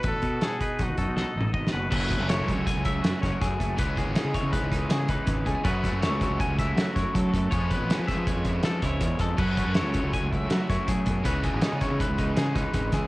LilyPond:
<<
  \new Staff \with { instrumentName = "Clean electric guitar" } { \time 5/4 \key fis \dorian \tempo 4 = 161 b'4 a'8 b'4 a'8 a'4 dis''8 b'8 | b'4 cis''4 gis''8 e''4 cis''8 gis'4 | b'8 gis'4 cis''8 b'4 gis'8 b'4 gis'8 | b'4 cis''4 gis''8 e''4 cis''8 a'4 |
cis''8 b'4 e''8 cis''4 a'8 cis''4 a'8 | b'4 cis''4 gis''8 e''4 cis''8 gis'4 | b'8 gis'4 cis''8 b'4 gis'8 b'4 gis'8 | }
  \new Staff \with { instrumentName = "Trumpet" } { \time 5/4 \key fis \dorian a'4 gis'4 fis'4. r4. | r1 r4 | r1 r4 | r1 r4 |
r1 r4 | r1 r4 | r1 r4 | }
  \new Staff \with { instrumentName = "Clean electric guitar" } { \time 5/4 \key fis \dorian << { r8 fis'8 fis'4 dis'8 dis'8 dis'8 r4 fis'8 | r8 a8 e'4. e'8 fis'8 cis'16 e'8. a8 | r8 b8 dis'4. dis'8 fis'16 gis'16 dis'4 a16 b16 | <fis a e' gis'>8 a8 e'4. e'8 fis'8 e'4 a8~ |
a8 b8 cis'16 e'4~ e'16 e'4 e'4. | r8 a8 e'4. e'8 fis'8 e'4. | <e b dis' fis'>8 a16 b16 dis'4. dis'8 gis'8 dis'4. | } \\ { b,4. dis'8 r4. dis'8 b,4 | fis,4. fis8 cis2 fis,4 | cis4. e8 gis,2 cis4 | fis,4. fis8 cis2 fis,4 |
eis,4. eis8 eis,2 e,8 eis,8 | fis,4. fis8 cis2 a,8 b,8 | cis4. e8 gis,2 dis8 e8 | } >> }
  \new Staff \with { instrumentName = "Overdriven electric guitar" } { \time 5/4 \key fis \dorian r1 r4 | <fis a cis' fis'>1~ <fis a cis' fis'>4 | <cis e gis cis' gis'>1~ <cis e gis cis' gis'>4 | <fis a cis' fis'>1~ <fis a cis' fis'>4 |
<eis gis cis' gis' b'>1~ <eis gis cis' gis' b'>4 | <fis a cis' fis'>1~ <fis a cis' fis'>4 | <cis e gis cis' gis'>1~ <cis e gis cis' gis'>4 | }
  \new Staff \with { instrumentName = "Fingered electric bass" } { \clef bass \time 5/4 \key fis \dorian a,,16 r16 b,8 r4 b,,16 dis,16 fis,16 b,,8 r16 a,,8 gis,,8 fis,,8 | fis,,8. fis,,8 cis,8 cis,16 r16 cis,8. fis,16 r16 fis,,16 r16 fis,8 fis,,8 | cis,8. gis,,16 r16 cis16 r16 cis16 r16 cis,8. cis8 cis,16 r16 gis,,8 cis,16 r16 | fis,8. fis,8 cis,8 cis,16 r16 cis,8. fis16 r16 fis,16 r16 fis8 fis,8 |
eis,8. a,,16 r16 eis16 r16 eis16 r16 eis,8. eis8 cis,8 e,8 eis,8 | fis,8. fis,8 cis,8 cis,16 r16 cis,8. fis16 r16 fis,16 r16 fis8 fis,8 | cis,8. gis,,16 r16 cis16 r16 cis16 r16 cis,8. cis8 cis,16 r16 gis,,8 cis,16 r16 | }
  \new DrumStaff \with { instrumentName = "Drums" } \drummode { \time 5/4 <hh bd>8 <hh bd>8 <hh sn>8 <hh bd>8 <hh bd sn>8 <hh bd>8 \tuplet 3/2 { sn8 r8 toml8 bd8 sn8 r8 } | <cymc bd>8 <hh bd>8 <hh sn>8 <hh bd>8 <hh bd>8 <hh bd>8 <hh sn>8 <hh bd sn>8 <hh bd sn>8 <hh bd>8 | <hh bd>8 <hh bd>8 <hh sn>8 <hh bd>8 <hh bd>8 <hh bd>8 <hh sn>8 <hh bd>8 <hh bd>8 <hh bd>8 | <hh bd>8 <hh bd sn>8 <hh sn>8 <hh bd>8 <hh bd>8 <hh bd sn>8 <hh sn>8 <hh bd sn>8 <hh bd>8 <hh bd>8 |
<hh bd>8 <hh bd>8 <hh sn>8 <hh bd sn>8 <hh bd>8 <hh bd>8 <hh sn>8 <hh bd sn>8 <hh bd sn>8 <hh bd sn>8 | <cymc bd>8 <hh bd>8 <hh sn>8 <hh bd>8 <hh bd>8 <hh bd>8 <hh sn>8 <hh bd sn>8 <hh bd>8 <hh bd>8 | <hh bd>8 <hh bd>8 <hh sn>8 <hh bd sn>8 <hh bd>8 <hh bd>8 <hh sn>8 <hh bd sn>8 <hh bd sn>8 <hh bd sn>8 | }
>>